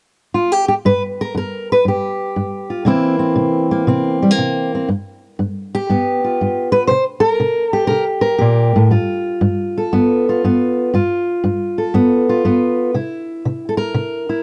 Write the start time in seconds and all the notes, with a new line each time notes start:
0.34 F4
0.52 G4
0.68 G4
0.85 G2 B4
1.21 A#4
1.35 G2 A#4
1.72 B4
1.85 G2 G4
2.36 G2
2.70 F4
2.85 C3 E3 A#3 C4 E4
3.19 C4
3.36 C3
3.71 A#3
3.87 C3 C4
4.22 G3
4.31 A#3
4.38 C3
4.75 C4
4.89 G2
5.39 G2
5.75 G4
5.89 G2 B3
6.24 F4
6.41 G2
6.72 B4
6.87 C3 C5
7.20 A#4
7.40 C3
7.70 G4 A4
7.87 C3 A#4
8.21 A#4
8.39 A#2 G4
8.76 A2
8.91 G2 F4
9.41 G2
9.78 A4
9.93 G2 B3
10.29 F4
10.44 G2 B3
10.94 G2 F4
11.44 G2
11.78 A4
11.94 G2 B3
12.29 F4
12.45 G2 B3
12.94 C3 E4
13.45 C3
13.69 A4
13.77 A#4
13.94 C3
14.29 E4